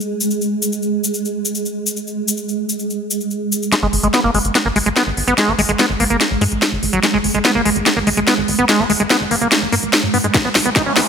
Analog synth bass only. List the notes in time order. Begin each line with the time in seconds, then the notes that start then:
3.83 G#1
3.93 G#1
4.03 G#1
4.24 G#1
4.35 G#1
4.45 G#1
4.66 G#1
4.76 G#1
4.86 G#1
5.07 G#1
5.17 G#1
5.28 G#1
5.48 G#1
5.59 G#1
5.69 G#1
5.90 G#1
6.00 G#1
6.10 G#1
6.31 A#1
6.41 G#2
6.52 A#1
6.72 G#1
6.83 G#1
6.93 G#1
7.14 G#1
7.24 G#1
7.34 G#1
7.55 G#1
7.65 G#1
7.76 G#1
7.96 G#1
8.07 G#1
8.17 G#1
8.38 G#1
8.48 G#1
8.59 G#1
8.79 G#1
8.90 G#1
9.00 G#1
9.21 G#1
9.31 G#1
9.41 G#1
9.62 A#1
9.72 G#2
9.83 A#1
10.03 G#2
10.14 G#2
10.24 G#2
10.45 B1
10.55 B1
10.66 B1
10.86 B1
10.96 B1